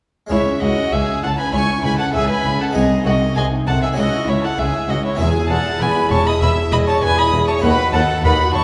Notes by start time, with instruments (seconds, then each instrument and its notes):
0.27 cello section C#2, harpsichord G#3 C#4 G#4, violin C#5
0.31 harpsichord C#2, double bass section C#2, viola section E4, violin section E4 E5
0.46 viola section C#4
0.61 cello section C#2, double bass section C#2, harpsichord C#2, viola section E4, violin section F#4 F#5, violin D#5
0.77 viola section C#4
0.92 double bass section C#2, cello section C#2, harpsichord C#2, viola section E4, violin section G#4 G#5, violin E5
1.07 viola section C#4
1.23 harpsichord C#2, cello section C#2, double bass section C#2, viola section E4, violin section A4 A5, violin F#5
1.38 viola section C#4, violin section B4 B5, violin G#5
1.52 harpsichord C#2, cello section C#2, double bass section C#2, viola section E4, violin section C#5 C#6, violin G#5
1.69 viola section C#4
1.83 cello section C#2, harpsichord C#2, double bass section C#2, viola section E4, violin section B4 B5, violin G#5
1.98 viola section C#4, violin section A4 A5, violin F#5
2.13 double bass section C#2, harpsichord C#2, cello section C#2, viola section E4, violin section G#4 G#5, violin E5
2.29 viola section C#4, violin section B4 B5, violin G#5
2.45 harpsichord C#2, cello section C#2, double bass section C#2, viola section E4
2.60 viola section C#4, violin section A4 A5, violin F#5
2.71 harpsichord G#3 D#4 G#4
2.75 double bass section C2, harpsichord C2, cello section C2, viola section C4, violin section G#4 G#5, violin D#5
2.92 viola section D#4
3.05 harpsichord C2, double bass section C2, cello section C2, viola section C4, violin section F#4 F#5, violin D#5
3.22 viola section D#4
3.36 double bass section C2, cello section C2, harpsichord C2, viola section C4, violin section G#4 G#5, violin D#5
3.53 viola section D#4
3.67 double bass section C2, cello section C2, harpsichord C2, viola section C4, violin section A4 A5, violin F#5
3.82 viola section D#4, violin section G#4 G#5, violin E5
3.93 harpsichord C#4 E4 G#4, violin section F#4
3.97 cello section C#2, double bass section C#2, harpsichord C#2, viola section C#4, violin D#5, violin section F#5
4.14 viola section E4
4.27 harpsichord C#2, double bass section C#2, cello section C#2, viola section C#4, violin section E4 E5, violin C#5
4.42 viola section E4, violin section A4 A5, violin F#5
4.58 harpsichord C#2, double bass section C#2, cello section C#2, viola section C#4, violin section G#4 G#5, violin E5
4.74 viola section E4
4.88 harpsichord C#2, double bass section C#2, cello section C#2, viola section C#4, violin section F#4 F#5, violin D#5
5.03 violin section E4 E5, viola section E4, violin C#5
5.15 harpsichord B3 E4 G#4, violin section G#4 G#5
5.19 double bass section E1, harpsichord E2, cello section E2, viola section G#4, violin E5
5.36 viola section E4
5.49 double bass section E1, harpsichord E2, cello section E2, viola section G#4, violin section A4 A5, violin F#5
5.66 viola section E4
5.80 double bass section E1, harpsichord E2, cello section E2, viola section G#4, violin section B4 B5, violin G#5
5.97 viola section E4
6.11 double bass section E1, harpsichord E2, cello section E2, viola section G#4, violin section C#5 C#6, violin A5
6.26 viola section E4, violin section D#5 D#6, violin B5
6.41 double bass section E1, harpsichord E2, cello section E2, viola section G#4, violin section E5 E6, violin B5
6.57 viola section E4
6.72 double bass section E1, cello section E2, harpsichord E2, viola section G#4, violin section D#5 D#6, violin B5
6.87 viola section E4, violin section C#5 C#6, violin A5
7.02 double bass section E1, cello section E2, harpsichord E2, viola section G#4, violin section B4 B5, violin G#5
7.17 viola section E4, violin section D#5 D#6, violin B5
7.32 double bass section E1, harpsichord E2, cello section E2, viola section G#4
7.48 viola section E4, violin section C#5 C#6, violin A5
7.58 harpsichord B3 F#4
7.62 harpsichord D#2, cello section D#2, double bass section D#2, viola section D#4, violin section B4 B5, violin F#5
7.79 viola section F#4
7.93 harpsichord D#2, cello section D#2, double bass section D#2, viola section D#4, violin section A4 A5, violin F#5
8.10 viola section F#4
8.24 cello section D#2, double bass section D#2, harpsichord D#2, viola section D#4, violin section B4 B5, violin F#5
8.39 viola section F#4
8.54 harpsichord D#2, cello section D#2, double bass section D#2, viola section D#4, violin section C#5 C#6, violin A5